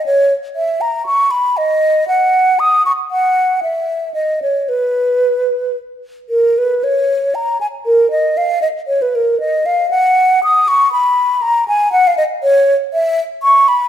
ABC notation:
X:1
M:3/4
L:1/16
Q:1/4=117
K:B
V:1 name="Flute"
c3 z e2 a2 c'2 b2 | d4 f4 d'2 c'2 | f4 e4 d2 c2 | B8 z4 |
[K:A#phr] A2 B2 c4 a2 g2 | A2 d2 e2 d2 c B A2 | d2 e2 f4 d'2 c'2 | b4 a2 g2 f e d2 |
[K:C#dor] c3 z e4 c'2 b2 |]